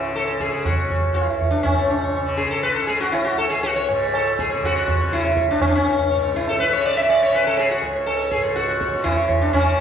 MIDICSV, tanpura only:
0, 0, Header, 1, 2, 480
1, 0, Start_track
1, 0, Tempo, 497100
1, 1591, Time_signature, 4, 2, 24, 8
1, 4944, Tempo, 490196
1, 9531, End_track
2, 0, Start_track
2, 0, Title_t, "Tanpura"
2, 0, Program_c, 0, 104
2, 0, Note_on_c, 0, 37, 63
2, 0, Note_on_c, 0, 44, 58
2, 0, Note_on_c, 0, 49, 57
2, 404, Note_off_c, 0, 49, 0
2, 404, Note_on_c, 0, 49, 56
2, 964, Note_off_c, 0, 37, 0
2, 968, Note_on_c, 0, 37, 59
2, 1592, Note_off_c, 0, 44, 0
2, 1595, Note_on_c, 0, 44, 61
2, 2135, Note_off_c, 0, 49, 0
2, 2135, Note_on_c, 0, 49, 64
2, 2691, Note_off_c, 0, 49, 0
2, 2691, Note_on_c, 0, 49, 62
2, 3223, Note_off_c, 0, 37, 0
2, 3227, Note_on_c, 0, 37, 68
2, 3764, Note_off_c, 0, 44, 0
2, 3768, Note_on_c, 0, 44, 73
2, 4320, Note_off_c, 0, 49, 0
2, 4320, Note_on_c, 0, 49, 61
2, 4859, Note_off_c, 0, 49, 0
2, 4859, Note_on_c, 0, 49, 67
2, 5384, Note_off_c, 0, 37, 0
2, 5388, Note_on_c, 0, 37, 63
2, 5948, Note_off_c, 0, 44, 0
2, 5952, Note_on_c, 0, 44, 66
2, 6501, Note_off_c, 0, 49, 0
2, 6501, Note_on_c, 0, 49, 72
2, 7036, Note_off_c, 0, 49, 0
2, 7036, Note_on_c, 0, 49, 63
2, 7583, Note_off_c, 0, 37, 0
2, 7587, Note_on_c, 0, 37, 70
2, 8121, Note_off_c, 0, 44, 0
2, 8125, Note_on_c, 0, 44, 63
2, 8680, Note_off_c, 0, 49, 0
2, 8680, Note_on_c, 0, 49, 67
2, 9219, Note_off_c, 0, 49, 0
2, 9219, Note_on_c, 0, 49, 63
2, 9531, Note_off_c, 0, 37, 0
2, 9531, Note_off_c, 0, 44, 0
2, 9531, Note_off_c, 0, 49, 0
2, 9531, End_track
0, 0, End_of_file